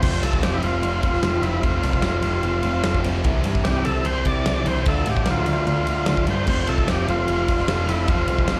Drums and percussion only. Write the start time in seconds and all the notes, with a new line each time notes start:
0.02 kick, crash
0.23 ride
0.33 kick
0.43 snare, ride
0.63 ride
0.83 ride
1.03 kick, ride
1.14 snare
1.23 snare, ride
1.43 ride
1.63 kick, ride
1.83 ride
1.93 kick
2.02 snare, ride
2.22 ride
2.43 ride
2.63 ride
2.84 snare, ride
2.94 kick
3.04 ride
3.24 kick, ride
3.44 ride
3.55 kick
3.65 snare, ride
3.85 ride
4.05 ride
4.25 kick, ride
4.46 snare, ride
4.66 ride
4.86 kick, ride
5.06 ride
5.17 kick
5.26 snare, ride
5.46 ride
5.67 ride
5.87 ride
6.06 snare, ride
6.17 kick
6.27 ride
6.47 kick, crash
6.67 ride
6.78 kick
6.88 snare, ride
7.08 ride
7.28 ride
7.48 kick, ride
7.58 snare
7.68 snare, ride
7.89 ride
8.08 kick, ride
8.28 ride
8.39 kick
8.48 snare, ride